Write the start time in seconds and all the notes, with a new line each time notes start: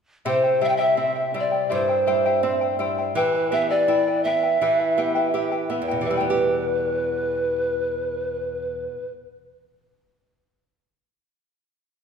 0.25 C3 E4 G4 C5 E5 G5
0.44 E4 C5 G5
0.61 G3 E4 G4 C5 E5 G5
0.69 G5
0.77 E4 G4 C5 E5 G5
0.97 C4 E4 C5 E5 G5
1.15 E4 C5 G5
1.34 G3 E4 C5 E5 G5
1.39 D5
1.52 E4 C5 G5
1.69 G2 E4 G4 C5 E5 G5
1.74 C5
1.89 E4 C5 G5
2.06 G3 E4 G4 C5 E5 G5
2.25 E4 G4 C5 E5 G5
2.43 C4 E4 C5 E5 G5
2.61 E4 C5 G5
2.79 G3 E4 C5 E5 G5
2.98 E4 C5 G5
3.15 E3 E4 G4 B4 E5 G5
3.34 E4 B4 G5
3.51 B3 E4 G4 B4 E5 G5
3.70 E4 G4 B4 D5 E5 G5
3.88 E4 B4 E5 G5
4.07 E4 B4 G5
4.24 B3 E4 B4 E5 G5
4.43 E4 B4 G5
4.61 E3 E4 G4 B4 E5 G5
4.79 E4 B4 G5
4.97 B3 E4 G4 B4 E5 G5
5.15 E4 G4 B4 E5 G5
5.34 E4 G4 B4 E5 G5
5.52 E4 B4 G5
5.70 B3 E4 B4 E5 G5
5.82 E2
5.88 B2 E4 B4 G5
6.01 E3 G4
6.06 B4 E5
6.10 G3 E4
6.14 B4 G5
6.20 B3
6.30 G4